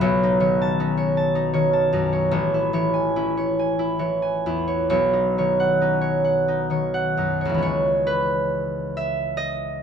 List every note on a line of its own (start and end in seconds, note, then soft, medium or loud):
0.00 2.33 B1 medium
0.00 2.34 F#3 medium
0.00 0.13 B3 soft
0.00 2.32 F#4 soft
0.00 1.47 B4 soft
0.00 0.39 C#5 medium
0.00 2.33 B5 medium
0.23 0.79 D#4 medium
0.40 1.53 D#3 soft
0.40 0.96 C#5 soft
0.62 1.16 A5 medium
0.80 3.15 C#4 soft
0.80 1.34 D#4 soft
0.97 1.52 C#5 medium
1.17 1.72 A5 soft
1.35 1.92 D#4 soft
1.54 2.34 D#3 soft
1.54 2.11 C#5 medium
1.73 4.91 A5 medium
1.93 2.34 F#2 soft
1.93 2.34 D#4 medium
2.13 2.31 C#5 medium
2.31 4.92 A1 medium
2.31 2.72 C#5 medium
2.54 3.15 E4 medium
2.73 3.98 E3 soft
2.73 3.36 C#5 medium
2.94 3.58 G#5 medium
3.16 5.81 C#4 soft
3.16 3.78 E4 soft
3.37 3.98 C#5 soft
3.59 4.21 G#5 soft
3.79 4.46 E4 soft
3.99 4.92 E3 soft
3.99 4.66 C#5 soft
4.22 4.93 G#5 soft
4.46 4.94 E2 soft
4.46 4.94 E4 soft
4.68 4.89 C#5 soft
4.90 7.65 B1 medium
4.90 5.37 C#5 medium
5.13 5.80 D#4 soft
5.38 6.69 D#3 soft
5.38 6.00 C#5 soft
5.60 6.23 F#5 soft
5.81 7.57 C#4 soft
5.81 6.47 D#4 soft
6.01 6.70 C#5 soft
6.24 6.93 F#5 soft
6.48 7.17 D#4 soft
6.70 7.65 D#3 soft
6.70 7.40 C#5 soft
6.94 7.65 F#5 soft
7.17 7.65 F#2 soft
7.17 7.65 D#4 soft
7.41 7.61 C#5 soft
7.45 9.83 C#2 soft
7.50 9.83 E3 soft
7.54 9.83 G#3 soft
7.54 9.83 C#4 soft
7.62 9.83 C#5 medium
8.07 9.83 B4 medium
8.97 9.83 E5 medium
9.37 9.83 D#5 medium